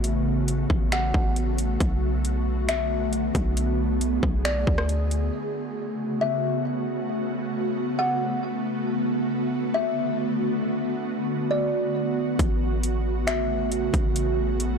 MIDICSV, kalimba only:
0, 0, Header, 1, 2, 480
1, 0, Start_track
1, 0, Key_signature, 3, "major"
1, 0, Tempo, 441176
1, 44, Time_signature, 4, 2, 24, 8
1, 16081, End_track
2, 0, Start_track
2, 0, Title_t, "Kalimba"
2, 0, Program_c, 0, 108
2, 1008, Note_on_c, 0, 78, 86
2, 1922, Note_off_c, 0, 78, 0
2, 2922, Note_on_c, 0, 76, 86
2, 3374, Note_off_c, 0, 76, 0
2, 4840, Note_on_c, 0, 74, 81
2, 5293, Note_off_c, 0, 74, 0
2, 6759, Note_on_c, 0, 76, 89
2, 7212, Note_off_c, 0, 76, 0
2, 8690, Note_on_c, 0, 78, 93
2, 9603, Note_off_c, 0, 78, 0
2, 10601, Note_on_c, 0, 76, 88
2, 11053, Note_off_c, 0, 76, 0
2, 12520, Note_on_c, 0, 74, 83
2, 12973, Note_off_c, 0, 74, 0
2, 14438, Note_on_c, 0, 76, 89
2, 14892, Note_off_c, 0, 76, 0
2, 16081, End_track
0, 0, End_of_file